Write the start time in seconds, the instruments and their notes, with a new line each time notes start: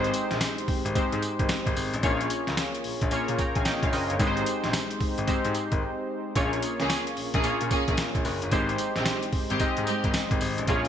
Already playing: synth keys G#3 C4 D#4 G4 C5
0.04 closed hi-hat
0.14 closed hi-hat, tambourine
0.31 grand piano A#1, snare, closed hi-hat
0.41 snare, closed hi-hat, tambourine
0.58 closed hi-hat
0.68 grand piano G#1, kick, open hi-hat
0.85 grand piano G#1, closed hi-hat
0.95 grand piano G#2, synth keys G#3 C4 D#4 G4 C5, kick, closed hi-hat, tambourine
1.12 grand piano G#2, closed hi-hat
1.22 closed hi-hat, tambourine
1.39 grand piano G#1, kick, closed hi-hat
1.49 snare, closed hi-hat, tambourine
1.66 grand piano G#1, kick, closed hi-hat
1.76 grand piano G#1, open hi-hat, tambourine
1.94 grand piano A1, closed hi-hat
2.03 grand piano A#1, synth keys A#3 C#4 F4 G#4 C#5, kick, closed hi-hat, tambourine
2.21 closed hi-hat
2.30 closed hi-hat, tambourine
2.47 grand piano C#2, snare, closed hi-hat
2.57 snare, closed hi-hat, tambourine
2.75 closed hi-hat
2.84 grand piano A#1, open hi-hat
3.01 grand piano A#1, kick, closed hi-hat
3.11 grand piano A#2, synth keys A#3 C#4 F4 G#4 C#5, closed hi-hat, tambourine
3.28 grand piano A#2, closed hi-hat
3.38 synth keys G5 A#5, kick, closed hi-hat, tambourine
3.55 grand piano A#1, synth keys F5 G#5, kick, closed hi-hat
3.65 synth keys D#5 G5, snare, closed hi-hat, tambourine
3.83 grand piano A#1, synth keys C#5 F5, kick, closed hi-hat
3.93 grand piano F#1, synth keys C5 D#5, open hi-hat, tambourine
4.10 grand piano G1, synth keys A#4 C#5, closed hi-hat
4.19 grand piano G#1, synth keys G#3 C4 D#4 G4 B4, kick, closed hi-hat, tambourine
4.27 synth keys C5
4.37 closed hi-hat
4.46 closed hi-hat, tambourine
4.64 grand piano A#1, snare, closed hi-hat
4.73 snare, closed hi-hat, tambourine
4.91 closed hi-hat
5.01 grand piano G#1, kick, open hi-hat
5.18 grand piano G#1, closed hi-hat
5.27 grand piano G#2, synth keys G#3 C4 D#4 G4 C5, kick, closed hi-hat, tambourine
5.45 grand piano G#2, closed hi-hat
5.54 closed hi-hat, tambourine
5.72 grand piano G#1, kick, closed hi-hat
6.35 grand piano A#1, synth keys A#3 C#4 F4 G#4 C#5, kick, closed hi-hat, tambourine
6.53 closed hi-hat
6.62 closed hi-hat, tambourine
6.80 grand piano C#2, string section A#3 C#4 G#4, snare, closed hi-hat
6.90 snare, closed hi-hat, tambourine
7.07 closed hi-hat
7.17 grand piano A#1, open hi-hat
7.34 grand piano A#1, string section A#3 C#4 G#4, kick, closed hi-hat
7.44 grand piano A#2, synth keys A#3 C#4 F4 G#4 C#5, closed hi-hat, tambourine
7.61 grand piano A#2, closed hi-hat
7.70 string section A#3 C#4 G#4, kick, closed hi-hat, tambourine
7.88 grand piano A#1, kick, closed hi-hat
7.97 snare, closed hi-hat, tambourine
8.15 grand piano A#1, kick, closed hi-hat
8.25 grand piano F#1, open hi-hat, tambourine
8.42 grand piano G1, closed hi-hat
8.51 grand piano G#1, synth keys G#3 C4 D#4 G4 C5, kick, closed hi-hat, tambourine
8.69 closed hi-hat
8.78 closed hi-hat, tambourine
8.96 grand piano A#1, string section G#3 C4 G4, snare, closed hi-hat
9.06 snare, closed hi-hat, tambourine
9.22 closed hi-hat
9.32 grand piano G#1, kick, open hi-hat
9.50 grand piano G#1, string section G#3 C4 G4, closed hi-hat
9.59 grand piano G#2, synth keys G#3 C4 D#4 G4 D#5, kick, closed hi-hat, tambourine
9.77 grand piano G#2, closed hi-hat
9.87 string section G#3 C4 G4, closed hi-hat, tambourine
10.04 grand piano G#1, kick, closed hi-hat
10.14 snare, closed hi-hat, tambourine
10.31 grand piano G#1, kick, closed hi-hat
10.41 grand piano G#1, open hi-hat, tambourine
10.58 grand piano A1, closed hi-hat
10.67 grand piano A#1, synth keys A#3 C#4 F4 G#4 C#5, kick, closed hi-hat, tambourine
10.85 closed hi-hat